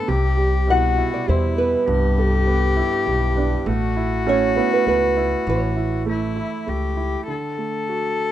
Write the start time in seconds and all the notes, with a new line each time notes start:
Already playing: A3 B3 C#4 A4
0.08 C2 C3 G4
0.37 G3
0.68 B2 E4 F#4 F#5
0.98 E4
1.14 D5
1.27 E2 G3 E4 C5
1.57 B3 B4
1.88 C2 G2 G4
2.18 G3 A4
2.47 B3
2.77 E4
3.06 B1 G3
3.36 B3 D4
3.66 A1 A3 F#4
3.96 E4
4.27 A3 C#4 C#5
4.56 B3 E4
4.74 B4
4.87 C#2 A3 B4
5.17 E4
5.47 A1 E3 C#5
5.76 E4
6.06 A3 E4
6.36 E4
6.67 C#2 A3 G4
6.97 E4
7.28 D3 A4
7.58 A3
7.89 F#4